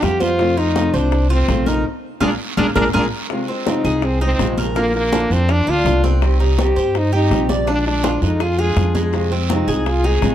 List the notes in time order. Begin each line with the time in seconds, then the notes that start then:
0.02 F2 G3 B3 F4 G4, high bongo, low bongo, high conga, short guiro
0.20 F4 C5, high bongo, high conga, short guiro
0.39 C3 D#3 A3 C4 F4, high bongo, high conga, long guiro
0.57 A3 C4 D#4 F4, high conga
0.75 C3 D#3 A3 C4 F4, high bongo, high conga, short guiro
0.93 C2 A3 C4 D4 F4 C5, high bongo, high conga, short guiro
1.12 muted nylon-string guitar stroke, high bongo, high conga, long guiro
1.29 A3 C4 F4, high bongo, high conga
1.48 A#1 C3 D#3 A3 C4 F4, high bongo, low bongo, high conga, short guiro
1.66 D#4 A#4, high bongo, high conga, short guiro
2.20 A#1 G#3 A#3 D4 F4 G#4 A#4, low bongo, high conga, long guiro
2.57 A#1 G#3 A#3 D4 F4 G#4 A#4, low bongo, high conga
2.76 A#1 G#3 A#3 D4 F4 G#4 A#4, low bongo, high conga, long guiro
2.93 A#1 G#3 A#3 D4 F4 G#4 A#4, low bongo, high conga, long guiro
3.30 C3 D#3 G#3 C4 F4, high bongo, high conga
3.48 G#3 C4 F4, high conga
3.66 C3 D#3 G#3 C4 D#4 F4, high bongo, high conga, short guiro
3.84 C2 G#3 C4 F4 G#4, high bongo, high conga, short guiro
4.02 C4, muted nylon-string guitar stroke, high bongo, high conga, long guiro
4.20 G#3 C4 D#4 F4, high bongo, high conga
4.39 A#1 C3 D#3 G#3 C4 F4, high bongo, low bongo, high conga, short guiro
4.57 A#4, high bongo, high conga, short guiro
4.75 D3 A#3 D4 F4, high bongo, high conga, long guiro
4.94 A#3 D4 F4, high bongo, high conga
5.12 D3 A#3 D4 F4, high bongo, high conga, short guiro
5.30 F2 A#3 C4 D4 F4, high conga, short guiro
5.49 D4 F4, muted nylon-string guitar stroke, high bongo, high conga, long guiro
5.66 D2 A#3 D4 F4, high bongo, high conga
5.85 C2 D3 A#3 D4 F4, high bongo, low bongo, high conga, short guiro
6.04 C4, high bongo, high conga, short guiro
6.22 C3 D#3 G3 C4 G4, high bongo, high conga, long guiro
6.40 G3 C4 D#4 G4, high conga
6.59 C3 D#3 G3 C4 G4, high bongo, high conga, short guiro
6.76 G2 G3 C4 G4 C5, high conga, short guiro
6.95 D#4, muted nylon-string guitar stroke, high bongo, high conga, long guiro
7.13 G3 C4 D#4 G4, high bongo, high conga
7.30 A#1 C3 D#3 G3 C4 G4, high bongo, low bongo, high conga, short guiro
7.49 D5, high bongo, high conga, short guiro
7.67 F3 G#3 D4 F4, high bongo, high conga, long guiro
7.86 G#3 D4 F4, high bongo, high conga
8.03 F3 G#3 D4 F4, high bongo, high conga, short guiro
8.22 F2 G#3 D4 D#4 F4, high conga, short guiro
8.40 F4 G#4, muted nylon-string guitar stroke, high bongo, high conga, long guiro
8.58 G#3 D4 F4 G#4, high bongo, high conga
8.76 F2 F3 G#3 D4 F4, high bongo, low bongo, high conga, short guiro
8.95 G#3, high bongo, high conga, short guiro
9.13 C3 D#3 G#3 C4 F4, high bongo, high conga, long guiro
9.31 G#3 C4 F4, high conga
9.49 C3 D#3 G#3 C4 D#4 F4, high bongo, high conga, short guiro
9.67 C2 G#3 C4 F4 G#4, high conga, short guiro
9.86 F4, muted nylon-string guitar stroke, high bongo, high conga, long guiro
10.03 G#3 C4 D#4 F4 G#4, high bongo, high conga
10.22 A#1 C3 D#3 G#3 C4 F4, high bongo, low bongo, high conga, short guiro